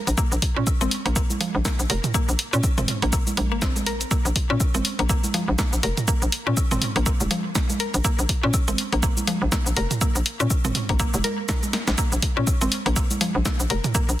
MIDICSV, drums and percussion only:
0, 0, Header, 1, 2, 480
1, 0, Start_track
1, 0, Key_signature, -5, "minor"
1, 0, Tempo, 491803
1, 172, Time_signature, 4, 2, 24, 8
1, 13859, End_track
2, 0, Start_track
2, 0, Title_t, "Drums"
2, 71, Note_on_c, 9, 46, 40
2, 71, Note_on_c, 9, 69, 30
2, 169, Note_off_c, 9, 46, 0
2, 169, Note_off_c, 9, 69, 0
2, 172, Note_on_c, 9, 36, 127
2, 172, Note_on_c, 9, 69, 63
2, 172, Note_on_c, 9, 76, 80
2, 269, Note_off_c, 9, 76, 0
2, 270, Note_off_c, 9, 36, 0
2, 270, Note_off_c, 9, 69, 0
2, 312, Note_on_c, 9, 69, 40
2, 409, Note_off_c, 9, 69, 0
2, 412, Note_on_c, 9, 36, 68
2, 412, Note_on_c, 9, 46, 95
2, 509, Note_off_c, 9, 46, 0
2, 510, Note_off_c, 9, 36, 0
2, 651, Note_on_c, 9, 76, 78
2, 652, Note_on_c, 9, 36, 127
2, 652, Note_on_c, 9, 69, 64
2, 749, Note_off_c, 9, 69, 0
2, 749, Note_off_c, 9, 76, 0
2, 750, Note_off_c, 9, 36, 0
2, 791, Note_on_c, 9, 63, 76
2, 791, Note_on_c, 9, 69, 42
2, 888, Note_off_c, 9, 63, 0
2, 889, Note_off_c, 9, 69, 0
2, 892, Note_on_c, 9, 46, 98
2, 989, Note_off_c, 9, 46, 0
2, 1031, Note_on_c, 9, 46, 38
2, 1129, Note_off_c, 9, 46, 0
2, 1132, Note_on_c, 9, 36, 127
2, 1132, Note_on_c, 9, 69, 62
2, 1132, Note_on_c, 9, 76, 40
2, 1229, Note_off_c, 9, 36, 0
2, 1229, Note_off_c, 9, 76, 0
2, 1230, Note_off_c, 9, 69, 0
2, 1271, Note_on_c, 9, 63, 57
2, 1271, Note_on_c, 9, 69, 44
2, 1369, Note_off_c, 9, 63, 0
2, 1369, Note_off_c, 9, 69, 0
2, 1372, Note_on_c, 9, 46, 100
2, 1372, Note_on_c, 9, 63, 73
2, 1470, Note_off_c, 9, 46, 0
2, 1470, Note_off_c, 9, 63, 0
2, 1612, Note_on_c, 9, 36, 127
2, 1612, Note_on_c, 9, 38, 113
2, 1612, Note_on_c, 9, 69, 65
2, 1612, Note_on_c, 9, 76, 77
2, 1709, Note_off_c, 9, 76, 0
2, 1710, Note_off_c, 9, 36, 0
2, 1710, Note_off_c, 9, 38, 0
2, 1710, Note_off_c, 9, 69, 0
2, 1751, Note_on_c, 9, 69, 40
2, 1849, Note_off_c, 9, 69, 0
2, 1852, Note_on_c, 9, 46, 97
2, 1950, Note_off_c, 9, 46, 0
2, 1991, Note_on_c, 9, 45, 87
2, 1991, Note_on_c, 9, 46, 39
2, 1991, Note_on_c, 9, 69, 30
2, 2089, Note_off_c, 9, 45, 0
2, 2089, Note_off_c, 9, 46, 0
2, 2089, Note_off_c, 9, 69, 0
2, 2092, Note_on_c, 9, 36, 119
2, 2092, Note_on_c, 9, 69, 63
2, 2092, Note_on_c, 9, 76, 80
2, 2189, Note_off_c, 9, 76, 0
2, 2190, Note_off_c, 9, 36, 0
2, 2190, Note_off_c, 9, 69, 0
2, 2231, Note_on_c, 9, 69, 40
2, 2329, Note_off_c, 9, 69, 0
2, 2332, Note_on_c, 9, 46, 94
2, 2429, Note_off_c, 9, 46, 0
2, 2471, Note_on_c, 9, 69, 28
2, 2568, Note_off_c, 9, 69, 0
2, 2572, Note_on_c, 9, 36, 127
2, 2572, Note_on_c, 9, 69, 58
2, 2572, Note_on_c, 9, 76, 38
2, 2669, Note_off_c, 9, 69, 0
2, 2670, Note_off_c, 9, 36, 0
2, 2670, Note_off_c, 9, 76, 0
2, 2711, Note_on_c, 9, 45, 93
2, 2711, Note_on_c, 9, 63, 70
2, 2711, Note_on_c, 9, 69, 42
2, 2809, Note_off_c, 9, 45, 0
2, 2809, Note_off_c, 9, 63, 0
2, 2809, Note_off_c, 9, 69, 0
2, 2812, Note_on_c, 9, 45, 75
2, 2812, Note_on_c, 9, 46, 98
2, 2909, Note_off_c, 9, 45, 0
2, 2909, Note_off_c, 9, 46, 0
2, 2951, Note_on_c, 9, 46, 41
2, 3048, Note_off_c, 9, 46, 0
2, 3052, Note_on_c, 9, 36, 125
2, 3052, Note_on_c, 9, 69, 60
2, 3052, Note_on_c, 9, 76, 79
2, 3150, Note_off_c, 9, 36, 0
2, 3150, Note_off_c, 9, 69, 0
2, 3150, Note_off_c, 9, 76, 0
2, 3191, Note_on_c, 9, 63, 58
2, 3191, Note_on_c, 9, 69, 44
2, 3289, Note_off_c, 9, 63, 0
2, 3289, Note_off_c, 9, 69, 0
2, 3291, Note_on_c, 9, 46, 100
2, 3292, Note_on_c, 9, 63, 76
2, 3389, Note_off_c, 9, 46, 0
2, 3390, Note_off_c, 9, 63, 0
2, 3532, Note_on_c, 9, 36, 127
2, 3532, Note_on_c, 9, 38, 111
2, 3532, Note_on_c, 9, 69, 62
2, 3532, Note_on_c, 9, 76, 76
2, 3629, Note_off_c, 9, 38, 0
2, 3629, Note_off_c, 9, 69, 0
2, 3630, Note_off_c, 9, 36, 0
2, 3630, Note_off_c, 9, 76, 0
2, 3671, Note_on_c, 9, 63, 75
2, 3671, Note_on_c, 9, 69, 39
2, 3769, Note_off_c, 9, 63, 0
2, 3769, Note_off_c, 9, 69, 0
2, 3772, Note_on_c, 9, 46, 98
2, 3870, Note_off_c, 9, 46, 0
2, 3912, Note_on_c, 9, 46, 38
2, 3912, Note_on_c, 9, 69, 28
2, 4009, Note_off_c, 9, 46, 0
2, 4009, Note_off_c, 9, 69, 0
2, 4012, Note_on_c, 9, 36, 117
2, 4013, Note_on_c, 9, 69, 61
2, 4013, Note_on_c, 9, 76, 81
2, 4110, Note_off_c, 9, 36, 0
2, 4110, Note_off_c, 9, 69, 0
2, 4110, Note_off_c, 9, 76, 0
2, 4152, Note_on_c, 9, 69, 40
2, 4249, Note_off_c, 9, 69, 0
2, 4252, Note_on_c, 9, 46, 93
2, 4253, Note_on_c, 9, 36, 65
2, 4350, Note_off_c, 9, 36, 0
2, 4350, Note_off_c, 9, 46, 0
2, 4492, Note_on_c, 9, 36, 127
2, 4492, Note_on_c, 9, 69, 62
2, 4493, Note_on_c, 9, 76, 39
2, 4590, Note_off_c, 9, 36, 0
2, 4590, Note_off_c, 9, 69, 0
2, 4590, Note_off_c, 9, 76, 0
2, 4631, Note_on_c, 9, 63, 74
2, 4631, Note_on_c, 9, 69, 41
2, 4729, Note_off_c, 9, 63, 0
2, 4729, Note_off_c, 9, 69, 0
2, 4732, Note_on_c, 9, 46, 95
2, 4829, Note_off_c, 9, 46, 0
2, 4871, Note_on_c, 9, 46, 38
2, 4969, Note_off_c, 9, 46, 0
2, 4972, Note_on_c, 9, 36, 124
2, 4972, Note_on_c, 9, 69, 63
2, 4972, Note_on_c, 9, 76, 77
2, 5070, Note_off_c, 9, 36, 0
2, 5070, Note_off_c, 9, 69, 0
2, 5070, Note_off_c, 9, 76, 0
2, 5111, Note_on_c, 9, 63, 57
2, 5111, Note_on_c, 9, 69, 42
2, 5209, Note_off_c, 9, 63, 0
2, 5209, Note_off_c, 9, 69, 0
2, 5212, Note_on_c, 9, 46, 92
2, 5212, Note_on_c, 9, 63, 67
2, 5309, Note_off_c, 9, 46, 0
2, 5310, Note_off_c, 9, 63, 0
2, 5452, Note_on_c, 9, 36, 126
2, 5452, Note_on_c, 9, 38, 109
2, 5452, Note_on_c, 9, 69, 61
2, 5452, Note_on_c, 9, 76, 76
2, 5550, Note_off_c, 9, 36, 0
2, 5550, Note_off_c, 9, 38, 0
2, 5550, Note_off_c, 9, 69, 0
2, 5550, Note_off_c, 9, 76, 0
2, 5592, Note_on_c, 9, 69, 39
2, 5689, Note_off_c, 9, 69, 0
2, 5692, Note_on_c, 9, 46, 91
2, 5789, Note_off_c, 9, 46, 0
2, 5831, Note_on_c, 9, 46, 37
2, 5831, Note_on_c, 9, 69, 30
2, 5832, Note_on_c, 9, 45, 83
2, 5929, Note_off_c, 9, 45, 0
2, 5929, Note_off_c, 9, 46, 0
2, 5929, Note_off_c, 9, 69, 0
2, 5932, Note_on_c, 9, 36, 117
2, 5932, Note_on_c, 9, 69, 64
2, 5933, Note_on_c, 9, 76, 41
2, 6029, Note_off_c, 9, 69, 0
2, 6030, Note_off_c, 9, 36, 0
2, 6030, Note_off_c, 9, 76, 0
2, 6071, Note_on_c, 9, 69, 42
2, 6169, Note_off_c, 9, 69, 0
2, 6172, Note_on_c, 9, 46, 89
2, 6269, Note_off_c, 9, 46, 0
2, 6412, Note_on_c, 9, 36, 123
2, 6412, Note_on_c, 9, 69, 62
2, 6412, Note_on_c, 9, 76, 80
2, 6509, Note_off_c, 9, 69, 0
2, 6510, Note_off_c, 9, 36, 0
2, 6510, Note_off_c, 9, 76, 0
2, 6551, Note_on_c, 9, 69, 41
2, 6552, Note_on_c, 9, 45, 87
2, 6552, Note_on_c, 9, 63, 71
2, 6648, Note_off_c, 9, 69, 0
2, 6649, Note_off_c, 9, 45, 0
2, 6649, Note_off_c, 9, 63, 0
2, 6652, Note_on_c, 9, 45, 72
2, 6652, Note_on_c, 9, 46, 94
2, 6750, Note_off_c, 9, 45, 0
2, 6750, Note_off_c, 9, 46, 0
2, 6791, Note_on_c, 9, 46, 36
2, 6889, Note_off_c, 9, 46, 0
2, 6891, Note_on_c, 9, 69, 66
2, 6892, Note_on_c, 9, 36, 126
2, 6893, Note_on_c, 9, 76, 77
2, 6989, Note_off_c, 9, 69, 0
2, 6990, Note_off_c, 9, 36, 0
2, 6990, Note_off_c, 9, 76, 0
2, 7030, Note_on_c, 9, 69, 44
2, 7031, Note_on_c, 9, 63, 54
2, 7128, Note_off_c, 9, 69, 0
2, 7129, Note_off_c, 9, 63, 0
2, 7132, Note_on_c, 9, 46, 92
2, 7132, Note_on_c, 9, 63, 65
2, 7229, Note_off_c, 9, 46, 0
2, 7230, Note_off_c, 9, 63, 0
2, 7372, Note_on_c, 9, 36, 121
2, 7372, Note_on_c, 9, 38, 101
2, 7372, Note_on_c, 9, 69, 63
2, 7372, Note_on_c, 9, 76, 38
2, 7469, Note_off_c, 9, 76, 0
2, 7470, Note_off_c, 9, 36, 0
2, 7470, Note_off_c, 9, 38, 0
2, 7470, Note_off_c, 9, 69, 0
2, 7511, Note_on_c, 9, 63, 68
2, 7511, Note_on_c, 9, 69, 42
2, 7609, Note_off_c, 9, 63, 0
2, 7609, Note_off_c, 9, 69, 0
2, 7612, Note_on_c, 9, 46, 89
2, 7710, Note_off_c, 9, 46, 0
2, 7752, Note_on_c, 9, 46, 36
2, 7752, Note_on_c, 9, 69, 30
2, 7849, Note_off_c, 9, 46, 0
2, 7849, Note_off_c, 9, 69, 0
2, 7852, Note_on_c, 9, 36, 109
2, 7852, Note_on_c, 9, 69, 66
2, 7852, Note_on_c, 9, 76, 86
2, 7949, Note_off_c, 9, 76, 0
2, 7950, Note_off_c, 9, 36, 0
2, 7950, Note_off_c, 9, 69, 0
2, 7991, Note_on_c, 9, 69, 42
2, 8089, Note_off_c, 9, 69, 0
2, 8092, Note_on_c, 9, 36, 62
2, 8092, Note_on_c, 9, 46, 89
2, 8190, Note_off_c, 9, 36, 0
2, 8190, Note_off_c, 9, 46, 0
2, 8332, Note_on_c, 9, 36, 116
2, 8332, Note_on_c, 9, 69, 67
2, 8332, Note_on_c, 9, 76, 83
2, 8429, Note_off_c, 9, 69, 0
2, 8429, Note_off_c, 9, 76, 0
2, 8430, Note_off_c, 9, 36, 0
2, 8471, Note_on_c, 9, 63, 67
2, 8471, Note_on_c, 9, 69, 43
2, 8569, Note_off_c, 9, 63, 0
2, 8569, Note_off_c, 9, 69, 0
2, 8572, Note_on_c, 9, 46, 90
2, 8669, Note_off_c, 9, 46, 0
2, 8711, Note_on_c, 9, 46, 36
2, 8809, Note_off_c, 9, 46, 0
2, 8812, Note_on_c, 9, 36, 122
2, 8812, Note_on_c, 9, 69, 68
2, 8812, Note_on_c, 9, 76, 41
2, 8909, Note_off_c, 9, 76, 0
2, 8910, Note_off_c, 9, 36, 0
2, 8910, Note_off_c, 9, 69, 0
2, 8951, Note_on_c, 9, 63, 54
2, 8951, Note_on_c, 9, 69, 45
2, 9049, Note_off_c, 9, 63, 0
2, 9049, Note_off_c, 9, 69, 0
2, 9052, Note_on_c, 9, 46, 93
2, 9052, Note_on_c, 9, 63, 69
2, 9149, Note_off_c, 9, 46, 0
2, 9149, Note_off_c, 9, 63, 0
2, 9292, Note_on_c, 9, 36, 121
2, 9292, Note_on_c, 9, 38, 106
2, 9292, Note_on_c, 9, 69, 67
2, 9292, Note_on_c, 9, 76, 85
2, 9389, Note_off_c, 9, 38, 0
2, 9389, Note_off_c, 9, 69, 0
2, 9389, Note_off_c, 9, 76, 0
2, 9390, Note_off_c, 9, 36, 0
2, 9431, Note_on_c, 9, 69, 44
2, 9528, Note_off_c, 9, 69, 0
2, 9531, Note_on_c, 9, 46, 88
2, 9628, Note_off_c, 9, 46, 0
2, 9670, Note_on_c, 9, 46, 36
2, 9670, Note_on_c, 9, 69, 31
2, 9671, Note_on_c, 9, 45, 84
2, 9768, Note_off_c, 9, 45, 0
2, 9768, Note_off_c, 9, 46, 0
2, 9768, Note_off_c, 9, 69, 0
2, 9771, Note_on_c, 9, 69, 65
2, 9772, Note_on_c, 9, 36, 114
2, 9772, Note_on_c, 9, 76, 87
2, 9869, Note_off_c, 9, 69, 0
2, 9869, Note_off_c, 9, 76, 0
2, 9870, Note_off_c, 9, 36, 0
2, 9911, Note_on_c, 9, 69, 45
2, 10008, Note_off_c, 9, 69, 0
2, 10012, Note_on_c, 9, 46, 88
2, 10109, Note_off_c, 9, 46, 0
2, 10151, Note_on_c, 9, 69, 30
2, 10249, Note_off_c, 9, 69, 0
2, 10251, Note_on_c, 9, 69, 66
2, 10252, Note_on_c, 9, 36, 124
2, 10252, Note_on_c, 9, 76, 42
2, 10349, Note_off_c, 9, 69, 0
2, 10349, Note_off_c, 9, 76, 0
2, 10350, Note_off_c, 9, 36, 0
2, 10390, Note_on_c, 9, 69, 44
2, 10391, Note_on_c, 9, 45, 91
2, 10391, Note_on_c, 9, 63, 67
2, 10488, Note_off_c, 9, 45, 0
2, 10488, Note_off_c, 9, 63, 0
2, 10488, Note_off_c, 9, 69, 0
2, 10491, Note_on_c, 9, 45, 80
2, 10491, Note_on_c, 9, 46, 90
2, 10589, Note_off_c, 9, 45, 0
2, 10589, Note_off_c, 9, 46, 0
2, 10631, Note_on_c, 9, 36, 60
2, 10631, Note_on_c, 9, 46, 37
2, 10728, Note_off_c, 9, 46, 0
2, 10729, Note_off_c, 9, 36, 0
2, 10731, Note_on_c, 9, 69, 68
2, 10732, Note_on_c, 9, 36, 116
2, 10732, Note_on_c, 9, 76, 84
2, 10829, Note_off_c, 9, 69, 0
2, 10829, Note_off_c, 9, 76, 0
2, 10830, Note_off_c, 9, 36, 0
2, 10870, Note_on_c, 9, 69, 47
2, 10871, Note_on_c, 9, 63, 55
2, 10968, Note_off_c, 9, 63, 0
2, 10968, Note_off_c, 9, 69, 0
2, 10971, Note_on_c, 9, 46, 87
2, 10972, Note_on_c, 9, 63, 70
2, 11069, Note_off_c, 9, 46, 0
2, 11069, Note_off_c, 9, 63, 0
2, 11211, Note_on_c, 9, 38, 112
2, 11211, Note_on_c, 9, 69, 67
2, 11212, Note_on_c, 9, 36, 117
2, 11212, Note_on_c, 9, 76, 81
2, 11309, Note_off_c, 9, 38, 0
2, 11309, Note_off_c, 9, 69, 0
2, 11309, Note_off_c, 9, 76, 0
2, 11310, Note_off_c, 9, 36, 0
2, 11350, Note_on_c, 9, 69, 43
2, 11351, Note_on_c, 9, 63, 68
2, 11448, Note_off_c, 9, 69, 0
2, 11449, Note_off_c, 9, 63, 0
2, 11451, Note_on_c, 9, 38, 86
2, 11451, Note_on_c, 9, 46, 91
2, 11549, Note_off_c, 9, 38, 0
2, 11549, Note_off_c, 9, 46, 0
2, 11590, Note_on_c, 9, 38, 100
2, 11590, Note_on_c, 9, 46, 37
2, 11590, Note_on_c, 9, 69, 32
2, 11688, Note_off_c, 9, 38, 0
2, 11688, Note_off_c, 9, 46, 0
2, 11688, Note_off_c, 9, 69, 0
2, 11691, Note_on_c, 9, 69, 68
2, 11692, Note_on_c, 9, 36, 125
2, 11692, Note_on_c, 9, 76, 89
2, 11789, Note_off_c, 9, 69, 0
2, 11790, Note_off_c, 9, 36, 0
2, 11790, Note_off_c, 9, 76, 0
2, 11830, Note_on_c, 9, 69, 45
2, 11928, Note_off_c, 9, 69, 0
2, 11931, Note_on_c, 9, 46, 94
2, 11932, Note_on_c, 9, 36, 65
2, 12029, Note_off_c, 9, 46, 0
2, 12030, Note_off_c, 9, 36, 0
2, 12172, Note_on_c, 9, 36, 127
2, 12172, Note_on_c, 9, 69, 65
2, 12172, Note_on_c, 9, 76, 42
2, 12269, Note_off_c, 9, 69, 0
2, 12270, Note_off_c, 9, 36, 0
2, 12270, Note_off_c, 9, 76, 0
2, 12311, Note_on_c, 9, 63, 73
2, 12311, Note_on_c, 9, 69, 44
2, 12408, Note_off_c, 9, 69, 0
2, 12409, Note_off_c, 9, 63, 0
2, 12412, Note_on_c, 9, 46, 94
2, 12509, Note_off_c, 9, 46, 0
2, 12551, Note_on_c, 9, 46, 37
2, 12649, Note_off_c, 9, 46, 0
2, 12652, Note_on_c, 9, 36, 125
2, 12652, Note_on_c, 9, 69, 67
2, 12653, Note_on_c, 9, 76, 85
2, 12749, Note_off_c, 9, 69, 0
2, 12750, Note_off_c, 9, 36, 0
2, 12750, Note_off_c, 9, 76, 0
2, 12791, Note_on_c, 9, 69, 48
2, 12792, Note_on_c, 9, 63, 57
2, 12889, Note_off_c, 9, 63, 0
2, 12889, Note_off_c, 9, 69, 0
2, 12892, Note_on_c, 9, 46, 93
2, 12892, Note_on_c, 9, 63, 73
2, 12990, Note_off_c, 9, 46, 0
2, 12990, Note_off_c, 9, 63, 0
2, 13132, Note_on_c, 9, 36, 121
2, 13132, Note_on_c, 9, 38, 118
2, 13132, Note_on_c, 9, 69, 71
2, 13133, Note_on_c, 9, 76, 88
2, 13230, Note_off_c, 9, 36, 0
2, 13230, Note_off_c, 9, 38, 0
2, 13230, Note_off_c, 9, 69, 0
2, 13230, Note_off_c, 9, 76, 0
2, 13271, Note_on_c, 9, 69, 44
2, 13369, Note_off_c, 9, 69, 0
2, 13372, Note_on_c, 9, 46, 94
2, 13469, Note_off_c, 9, 46, 0
2, 13511, Note_on_c, 9, 45, 92
2, 13511, Note_on_c, 9, 46, 37
2, 13511, Note_on_c, 9, 69, 33
2, 13608, Note_off_c, 9, 46, 0
2, 13608, Note_off_c, 9, 69, 0
2, 13609, Note_off_c, 9, 45, 0
2, 13611, Note_on_c, 9, 69, 64
2, 13612, Note_on_c, 9, 36, 127
2, 13613, Note_on_c, 9, 76, 42
2, 13709, Note_off_c, 9, 69, 0
2, 13710, Note_off_c, 9, 36, 0
2, 13711, Note_off_c, 9, 76, 0
2, 13751, Note_on_c, 9, 69, 43
2, 13848, Note_off_c, 9, 69, 0
2, 13859, End_track
0, 0, End_of_file